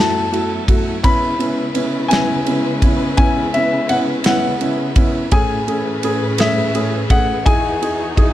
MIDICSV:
0, 0, Header, 1, 5, 480
1, 0, Start_track
1, 0, Tempo, 714116
1, 700, Time_signature, 6, 3, 24, 8
1, 5599, End_track
2, 0, Start_track
2, 0, Title_t, "Grand piano"
2, 0, Program_c, 0, 0
2, 0, Note_on_c, 0, 81, 83
2, 697, Note_on_c, 0, 83, 98
2, 718, Note_off_c, 0, 81, 0
2, 1401, Note_on_c, 0, 80, 91
2, 1440, Note_off_c, 0, 83, 0
2, 2123, Note_off_c, 0, 80, 0
2, 2133, Note_on_c, 0, 80, 91
2, 2359, Note_off_c, 0, 80, 0
2, 2378, Note_on_c, 0, 76, 80
2, 2616, Note_on_c, 0, 78, 85
2, 2626, Note_off_c, 0, 76, 0
2, 2670, Note_off_c, 0, 78, 0
2, 2863, Note_on_c, 0, 78, 81
2, 3575, Note_on_c, 0, 80, 87
2, 3602, Note_off_c, 0, 78, 0
2, 4030, Note_off_c, 0, 80, 0
2, 4303, Note_on_c, 0, 76, 81
2, 4778, Note_on_c, 0, 78, 93
2, 4795, Note_off_c, 0, 76, 0
2, 5001, Note_off_c, 0, 78, 0
2, 5012, Note_on_c, 0, 80, 99
2, 5599, Note_off_c, 0, 80, 0
2, 5599, End_track
3, 0, Start_track
3, 0, Title_t, "Felt piano"
3, 0, Program_c, 1, 0
3, 0, Note_on_c, 1, 57, 76
3, 0, Note_on_c, 1, 64, 76
3, 0, Note_on_c, 1, 66, 90
3, 152, Note_off_c, 1, 57, 0
3, 153, Note_off_c, 1, 64, 0
3, 154, Note_off_c, 1, 66, 0
3, 212, Note_on_c, 1, 57, 66
3, 215, Note_on_c, 1, 64, 61
3, 216, Note_on_c, 1, 66, 74
3, 391, Note_off_c, 1, 57, 0
3, 392, Note_off_c, 1, 64, 0
3, 393, Note_off_c, 1, 66, 0
3, 454, Note_on_c, 1, 57, 68
3, 456, Note_on_c, 1, 64, 59
3, 458, Note_on_c, 1, 66, 75
3, 632, Note_off_c, 1, 57, 0
3, 633, Note_off_c, 1, 64, 0
3, 634, Note_off_c, 1, 66, 0
3, 695, Note_on_c, 1, 59, 90
3, 695, Note_on_c, 1, 61, 83
3, 699, Note_on_c, 1, 64, 97
3, 872, Note_off_c, 1, 59, 0
3, 872, Note_off_c, 1, 61, 0
3, 874, Note_off_c, 1, 64, 0
3, 932, Note_on_c, 1, 59, 60
3, 933, Note_on_c, 1, 61, 62
3, 937, Note_on_c, 1, 64, 69
3, 1110, Note_off_c, 1, 59, 0
3, 1111, Note_off_c, 1, 61, 0
3, 1113, Note_off_c, 1, 64, 0
3, 1172, Note_on_c, 1, 59, 72
3, 1172, Note_on_c, 1, 61, 65
3, 1175, Note_on_c, 1, 64, 75
3, 1351, Note_off_c, 1, 59, 0
3, 1351, Note_off_c, 1, 61, 0
3, 1352, Note_off_c, 1, 64, 0
3, 1409, Note_on_c, 1, 59, 83
3, 1413, Note_on_c, 1, 61, 77
3, 1414, Note_on_c, 1, 64, 86
3, 1589, Note_off_c, 1, 59, 0
3, 1591, Note_off_c, 1, 61, 0
3, 1592, Note_off_c, 1, 64, 0
3, 1651, Note_on_c, 1, 59, 68
3, 1654, Note_on_c, 1, 61, 63
3, 1657, Note_on_c, 1, 64, 73
3, 1830, Note_off_c, 1, 59, 0
3, 1831, Note_off_c, 1, 61, 0
3, 1833, Note_off_c, 1, 64, 0
3, 1899, Note_on_c, 1, 59, 65
3, 1900, Note_on_c, 1, 61, 61
3, 1903, Note_on_c, 1, 64, 76
3, 2074, Note_off_c, 1, 59, 0
3, 2074, Note_off_c, 1, 61, 0
3, 2076, Note_off_c, 1, 64, 0
3, 2133, Note_on_c, 1, 59, 85
3, 2133, Note_on_c, 1, 61, 82
3, 2136, Note_on_c, 1, 64, 97
3, 2311, Note_off_c, 1, 59, 0
3, 2311, Note_off_c, 1, 61, 0
3, 2312, Note_off_c, 1, 64, 0
3, 2381, Note_on_c, 1, 59, 69
3, 2384, Note_on_c, 1, 61, 63
3, 2384, Note_on_c, 1, 64, 75
3, 2555, Note_off_c, 1, 59, 0
3, 2556, Note_off_c, 1, 61, 0
3, 2556, Note_off_c, 1, 64, 0
3, 2619, Note_on_c, 1, 61, 65
3, 2620, Note_on_c, 1, 59, 72
3, 2621, Note_on_c, 1, 64, 74
3, 2794, Note_off_c, 1, 59, 0
3, 2794, Note_off_c, 1, 61, 0
3, 2795, Note_off_c, 1, 64, 0
3, 2852, Note_on_c, 1, 59, 85
3, 2853, Note_on_c, 1, 61, 76
3, 2857, Note_on_c, 1, 64, 97
3, 3030, Note_off_c, 1, 59, 0
3, 3031, Note_off_c, 1, 61, 0
3, 3033, Note_off_c, 1, 64, 0
3, 3096, Note_on_c, 1, 59, 66
3, 3097, Note_on_c, 1, 61, 66
3, 3099, Note_on_c, 1, 64, 83
3, 3272, Note_off_c, 1, 59, 0
3, 3272, Note_off_c, 1, 61, 0
3, 3274, Note_off_c, 1, 64, 0
3, 3336, Note_on_c, 1, 59, 70
3, 3338, Note_on_c, 1, 61, 63
3, 3341, Note_on_c, 1, 64, 77
3, 3512, Note_off_c, 1, 59, 0
3, 3513, Note_off_c, 1, 61, 0
3, 3514, Note_off_c, 1, 64, 0
3, 3573, Note_on_c, 1, 61, 84
3, 3574, Note_on_c, 1, 57, 93
3, 3577, Note_on_c, 1, 68, 102
3, 3750, Note_off_c, 1, 61, 0
3, 3751, Note_off_c, 1, 57, 0
3, 3752, Note_off_c, 1, 68, 0
3, 3814, Note_on_c, 1, 57, 72
3, 3815, Note_on_c, 1, 61, 63
3, 3818, Note_on_c, 1, 68, 74
3, 3991, Note_off_c, 1, 57, 0
3, 3991, Note_off_c, 1, 61, 0
3, 3993, Note_off_c, 1, 68, 0
3, 4055, Note_on_c, 1, 57, 73
3, 4057, Note_on_c, 1, 61, 67
3, 4061, Note_on_c, 1, 68, 85
3, 4231, Note_off_c, 1, 57, 0
3, 4232, Note_off_c, 1, 61, 0
3, 4234, Note_off_c, 1, 68, 0
3, 4291, Note_on_c, 1, 57, 89
3, 4294, Note_on_c, 1, 61, 86
3, 4297, Note_on_c, 1, 68, 98
3, 4469, Note_off_c, 1, 57, 0
3, 4471, Note_off_c, 1, 61, 0
3, 4472, Note_off_c, 1, 68, 0
3, 4534, Note_on_c, 1, 57, 70
3, 4537, Note_on_c, 1, 61, 70
3, 4537, Note_on_c, 1, 68, 76
3, 4710, Note_off_c, 1, 57, 0
3, 4712, Note_off_c, 1, 61, 0
3, 4712, Note_off_c, 1, 68, 0
3, 4775, Note_on_c, 1, 57, 69
3, 4777, Note_on_c, 1, 61, 64
3, 4779, Note_on_c, 1, 68, 79
3, 4951, Note_off_c, 1, 57, 0
3, 4952, Note_off_c, 1, 61, 0
3, 4953, Note_off_c, 1, 68, 0
3, 5009, Note_on_c, 1, 63, 91
3, 5014, Note_on_c, 1, 64, 82
3, 5014, Note_on_c, 1, 68, 99
3, 5188, Note_off_c, 1, 63, 0
3, 5190, Note_off_c, 1, 64, 0
3, 5191, Note_off_c, 1, 68, 0
3, 5251, Note_on_c, 1, 63, 66
3, 5254, Note_on_c, 1, 64, 61
3, 5257, Note_on_c, 1, 68, 73
3, 5429, Note_off_c, 1, 63, 0
3, 5430, Note_off_c, 1, 64, 0
3, 5432, Note_off_c, 1, 68, 0
3, 5490, Note_on_c, 1, 63, 66
3, 5494, Note_on_c, 1, 64, 70
3, 5497, Note_on_c, 1, 68, 83
3, 5599, Note_off_c, 1, 63, 0
3, 5599, Note_off_c, 1, 64, 0
3, 5599, Note_off_c, 1, 68, 0
3, 5599, End_track
4, 0, Start_track
4, 0, Title_t, "String section"
4, 0, Program_c, 2, 48
4, 0, Note_on_c, 2, 42, 80
4, 0, Note_on_c, 2, 54, 68
4, 0, Note_on_c, 2, 59, 63
4, 0, Note_on_c, 2, 64, 66
4, 0, Note_on_c, 2, 69, 78
4, 673, Note_off_c, 2, 59, 0
4, 675, Note_off_c, 2, 42, 0
4, 675, Note_off_c, 2, 69, 0
4, 676, Note_off_c, 2, 54, 0
4, 695, Note_on_c, 2, 49, 74
4, 695, Note_on_c, 2, 61, 63
4, 696, Note_on_c, 2, 56, 65
4, 698, Note_on_c, 2, 71, 80
4, 3549, Note_off_c, 2, 49, 0
4, 3549, Note_off_c, 2, 61, 0
4, 3550, Note_off_c, 2, 56, 0
4, 3550, Note_off_c, 2, 71, 0
4, 3552, Note_off_c, 2, 64, 0
4, 3574, Note_on_c, 2, 61, 73
4, 3576, Note_on_c, 2, 45, 76
4, 3576, Note_on_c, 2, 68, 68
4, 3577, Note_on_c, 2, 52, 70
4, 3579, Note_on_c, 2, 71, 83
4, 5001, Note_off_c, 2, 61, 0
4, 5002, Note_off_c, 2, 45, 0
4, 5003, Note_off_c, 2, 71, 0
4, 5015, Note_on_c, 2, 40, 71
4, 5017, Note_on_c, 2, 66, 71
4, 5020, Note_on_c, 2, 63, 72
4, 5599, Note_off_c, 2, 40, 0
4, 5599, Note_off_c, 2, 52, 0
4, 5599, Note_off_c, 2, 63, 0
4, 5599, Note_off_c, 2, 66, 0
4, 5599, Note_off_c, 2, 68, 0
4, 5599, End_track
5, 0, Start_track
5, 0, Title_t, "Drums"
5, 0, Note_on_c, 9, 38, 104
5, 64, Note_off_c, 9, 38, 0
5, 225, Note_on_c, 9, 51, 38
5, 293, Note_off_c, 9, 51, 0
5, 458, Note_on_c, 9, 36, 78
5, 460, Note_on_c, 9, 51, 51
5, 526, Note_off_c, 9, 36, 0
5, 527, Note_off_c, 9, 51, 0
5, 699, Note_on_c, 9, 51, 55
5, 700, Note_on_c, 9, 36, 86
5, 766, Note_off_c, 9, 51, 0
5, 767, Note_off_c, 9, 36, 0
5, 943, Note_on_c, 9, 51, 38
5, 1010, Note_off_c, 9, 51, 0
5, 1175, Note_on_c, 9, 51, 45
5, 1242, Note_off_c, 9, 51, 0
5, 1418, Note_on_c, 9, 51, 63
5, 1432, Note_on_c, 9, 38, 106
5, 1485, Note_off_c, 9, 51, 0
5, 1499, Note_off_c, 9, 38, 0
5, 1657, Note_on_c, 9, 51, 38
5, 1724, Note_off_c, 9, 51, 0
5, 1896, Note_on_c, 9, 36, 74
5, 1896, Note_on_c, 9, 51, 53
5, 1963, Note_off_c, 9, 36, 0
5, 1964, Note_off_c, 9, 51, 0
5, 2133, Note_on_c, 9, 51, 54
5, 2137, Note_on_c, 9, 36, 94
5, 2201, Note_off_c, 9, 51, 0
5, 2205, Note_off_c, 9, 36, 0
5, 2379, Note_on_c, 9, 51, 38
5, 2447, Note_off_c, 9, 51, 0
5, 2616, Note_on_c, 9, 51, 44
5, 2683, Note_off_c, 9, 51, 0
5, 2850, Note_on_c, 9, 51, 70
5, 2864, Note_on_c, 9, 38, 103
5, 2918, Note_off_c, 9, 51, 0
5, 2931, Note_off_c, 9, 38, 0
5, 3097, Note_on_c, 9, 51, 38
5, 3164, Note_off_c, 9, 51, 0
5, 3332, Note_on_c, 9, 51, 57
5, 3334, Note_on_c, 9, 36, 74
5, 3399, Note_off_c, 9, 51, 0
5, 3401, Note_off_c, 9, 36, 0
5, 3572, Note_on_c, 9, 51, 53
5, 3576, Note_on_c, 9, 36, 84
5, 3639, Note_off_c, 9, 51, 0
5, 3643, Note_off_c, 9, 36, 0
5, 3818, Note_on_c, 9, 51, 37
5, 3885, Note_off_c, 9, 51, 0
5, 4053, Note_on_c, 9, 51, 43
5, 4121, Note_off_c, 9, 51, 0
5, 4290, Note_on_c, 9, 51, 67
5, 4304, Note_on_c, 9, 38, 102
5, 4357, Note_off_c, 9, 51, 0
5, 4371, Note_off_c, 9, 38, 0
5, 4535, Note_on_c, 9, 51, 37
5, 4603, Note_off_c, 9, 51, 0
5, 4773, Note_on_c, 9, 36, 76
5, 4773, Note_on_c, 9, 51, 51
5, 4840, Note_off_c, 9, 36, 0
5, 4840, Note_off_c, 9, 51, 0
5, 5016, Note_on_c, 9, 36, 96
5, 5018, Note_on_c, 9, 51, 53
5, 5083, Note_off_c, 9, 36, 0
5, 5086, Note_off_c, 9, 51, 0
5, 5260, Note_on_c, 9, 51, 41
5, 5327, Note_off_c, 9, 51, 0
5, 5495, Note_on_c, 9, 36, 73
5, 5495, Note_on_c, 9, 51, 42
5, 5562, Note_off_c, 9, 36, 0
5, 5562, Note_off_c, 9, 51, 0
5, 5599, End_track
0, 0, End_of_file